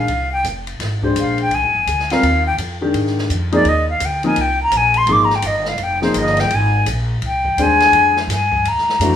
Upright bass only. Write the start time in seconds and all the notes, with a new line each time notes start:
0.08 C2
0.44 F1
0.79 G#1
1.16 A#1
1.51 C2
1.62 G#1
1.75 F1
1.87 D2
2.23 D#2
2.57 F2
2.94 G#2
3.30 F2
3.64 D#2
4.00 D2
4.36 C2
4.71 A#1
5.07 G#1
5.43 G1
5.79 F1
6.14 G1
6.50 G#1
6.85 A#1
7.22 C2
7.57 D#2
7.92 F2
8.28 G2
8.64 D#2
8.99 F2